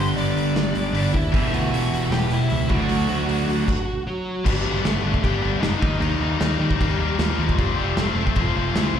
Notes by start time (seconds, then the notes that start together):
Already playing: G1 G2 D3 G3 B3 D4 G4
0.16 G1 D5 D6, open hi-hat
0.35 G1, open hi-hat
0.56 G1, snare, open hi-hat
0.75 G1, open hi-hat
0.93 G1 G3 B3 D4 G4, open hi-hat
1.13 D#2 E4 E5, kick, open hi-hat
1.32 E1 E2 B2 E3 B3 E4 G4, kick, open hi-hat
1.52 D2 F#4 F#5, open hi-hat
1.72 E1, open hi-hat
1.92 E1, open hi-hat
2.11 E1 G4 G5, snare, open hi-hat
2.30 E1 E4 E5, open hi-hat
2.50 C#2, open hi-hat
2.69 D2 D3 F#3 A3 D4 F#4 F#5, kick, open hi-hat
2.89 D2, open hi-hat
3.09 D2, open hi-hat
3.29 D2, open hi-hat
3.48 D2, open hi-hat
3.68 kick, crash
4.07 F#3 F#4
4.44 G1 G2 D3 G3 B3 D4 F#4, kick, crash
4.57 G4
4.64 G1 G2 D3 G3 B3 D4
4.84 G1 G2 D3 G3 A3 B3 D4 A4, snare, crash
5.04 G1 G2 D3 G3 B3 D4
5.14 kick
5.22 G1 G2 D3 G3 B3 D4 G4, kick, crash
5.41 G1 G2 D3 G3 B3 D4
5.60 F1 G2 D3 G3 B3 D4 D#4 D#5, snare, crash
5.80 D#2 D#3 G3 A#3 D#4, kick
5.99 D#2 D#3 G3 A#3 D#4 D#5, crash
6.19 D#2 D#3 G3 A#3 D#4
6.39 D#2 D#3 G3 A#3 D#4, snare, crash
6.57 D#3 G3 A#3 G4
6.62 D#4
6.71 kick
6.79 D#2 D#3 G3 A#3 D#4, kick, crash
6.99 D#2 D#3 G3 A#3 D#4
7.18 D#2 D#3 F3 G3 A#3 D#4 F4, snare, crash
7.39 D#2 D#3 G3 A#3 D#4
7.49 kick
7.58 F1 F3 G3 A3 C4 F4 G4, kick, crash
7.77 F1 F3 A3 C4 F4
7.97 F1 F3 A3 C4 F4, snare, crash
8.01 A4
8.16 F1 F3 A3 C4 F4
8.27 kick
8.36 F1 F3 A3 C4 F4, kick, crash
8.42 F4
8.55 F1 F3 A3 C4 F4
8.75 D2 E3 F3 A3 C4 F4, snare, crash
8.79 E4
8.94 C2 F3 A3 C4